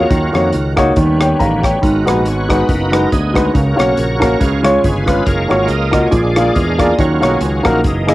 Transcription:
Already playing: A#3 C#4 F#4 A#4
0.10 D#2 D#3 F#3 C#4 D#4 F4, kick, closed hi-hat
0.33 F2 A#3 D#4 F#4 C#5, cross-stick, closed hi-hat
0.52 C#2, closed hi-hat
0.76 A#3 D#4 F#4 C#5, kick, cross-stick, closed hi-hat
0.95 D#2 B2 D#3 G3 B3 C#4 D#4, kick, closed hi-hat
1.20 C#5 G5, cross-stick, closed hi-hat
1.39 A1 F5 A#5, kick, closed hi-hat
1.63 C#5 G5, kick, cross-stick, closed hi-hat
1.82 G#1 G#2 G#3 B3 F#4 A#4, kick, closed hi-hat
2.05 A#1 G#3 D#4 F#4 G#4 B4, cross-stick, closed hi-hat
2.18 A#4
2.26 G#1 F#4 C#5, closed hi-hat
2.49 G#3 D#4 F#4 B4, kick, cross-stick, closed hi-hat
2.60 D#4 F#4 B4
2.68 F#1 A#3 B3 F#4, kick, closed hi-hat
2.91 G#3 D#4 F#4 A#4 B4, cross-stick, closed hi-hat
3.12 D2 B3 D#4 G#4, kick, closed hi-hat
3.34 G#3 D#4 F#4 B4, kick, cross-stick, closed hi-hat
3.45 C#4 F#4 A#4
3.53 C#2 C#3 F#3 A#3 C#4 F#4, kick, closed hi-hat
3.76 B1 A#3 C#4 F#4 A#4 C#5, cross-stick, closed hi-hat
3.97 A#1, closed hi-hat
4.20 A#3 C#4 F#4 A#4, kick, cross-stick, closed hi-hat
4.39 C#2 C#3 F3 G#3 C#4 F4, kick, closed hi-hat
4.63 G#3 C#4 F4 C#5, cross-stick, closed hi-hat
4.84 G1 F4 G#4 B4, kick, closed hi-hat
5.06 G#3 C#4 F4 B4, kick, cross-stick, closed hi-hat
5.25 F#1 F#3 G#3 A#3 F4 A#4 C#5, kick, closed hi-hat
5.49 G#1 A#3 F4 F#4 C#5, cross-stick, closed hi-hat
5.68 C#2 A#4 D#5, closed hi-hat
5.91 A#3 F4 F#4 D#5, kick, cross-stick, closed hi-hat
6.06 C#5
6.11 A#1 A#2 G#3 D4 F4 G#4 D5, kick, closed hi-hat
6.36 A#3 F4 G#4 D5, cross-stick, closed hi-hat
6.55 E2 D4 F4 A#4, kick, closed hi-hat
6.78 A#3 F4 G#4 D5, kick, cross-stick, closed hi-hat
6.93 D#5
6.98 D#2 D#3 F#3 C#4 D#4 F4 F#4 A#4 C#5, kick, closed hi-hat
7.20 B1 A#3 C#4 D#4 F#4 G#4 C#5, cross-stick, closed hi-hat
7.41 C#2, closed hi-hat
7.63 A#1 A#3 D#4 F#4 A#4, kick, cross-stick, closed hi-hat
7.84 F#1 E3 G#3 A#3 D#4, kick, closed hi-hat
8.07 A#3 E4 G#4 D#5, cross-stick, closed hi-hat

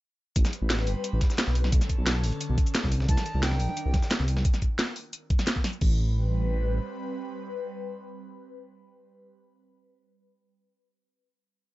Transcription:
0.36 A1 G3 C4 B4, kick, closed hi-hat, cabasa
0.45 snare, cabasa
0.53 closed hi-hat, cabasa
0.62 A1
0.70 snare, closed hi-hat, cabasa
0.79 snare
0.87 G1, closed hi-hat, open hi-hat
1.04 closed hi-hat, cabasa
1.13 A1
1.21 kick, snare, closed hi-hat
1.30 snare, cabasa
1.38 snare, closed hi-hat, cabasa
1.47 B1, snare
1.55 D3 C#4 A4, closed hi-hat, open hi-hat
1.64 snare
1.72 B1, kick, closed hi-hat, cabasa
1.81 snare, closed hi-hat, cabasa
1.89 kick, closed hi-hat, cabasa
1.98 B1
2.06 snare, closed hi-hat, cabasa
2.24 A1, open hi-hat
2.32 closed hi-hat
2.41 closed hi-hat, cabasa
2.49 B1
2.58 kick, closed hi-hat
2.66 closed hi-hat, cabasa
2.75 snare, closed hi-hat, cabasa
2.83 C2, kick, snare
2.92 D#3 D4 A#4, closed hi-hat, open hi-hat
3.00 snare
3.08 C2 A5, kick, closed hi-hat, high conga, cabasa
3.17 snare, cabasa
3.26 closed hi-hat, cabasa
3.35 C2, muted conga
3.43 G5, snare, closed hi-hat, cabasa
3.51 snare, high conga
3.60 A#1, closed hi-hat, open hi-hat
3.69 muted conga
3.77 closed hi-hat, cabasa
3.86 C2
3.94 kick, snare, closed hi-hat, muted conga, high conga
4.03 snare, cabasa
4.11 snare, closed hi-hat, cabasa
4.20 C2, snare
4.28 closed hi-hat, open hi-hat
4.37 snare
4.45 kick, closed hi-hat, cabasa
4.54 snare, cabasa
4.62 kick, closed hi-hat, cabasa
4.79 snare, closed hi-hat, cabasa
4.96 open hi-hat
5.13 closed hi-hat, cabasa
5.30 kick, closed hi-hat
5.39 snare, cabasa
5.47 snare, closed hi-hat, cabasa
5.56 kick
5.64 snare, open hi-hat
5.73 cabasa
5.81 A1 G3 C4 B4, kick, crash

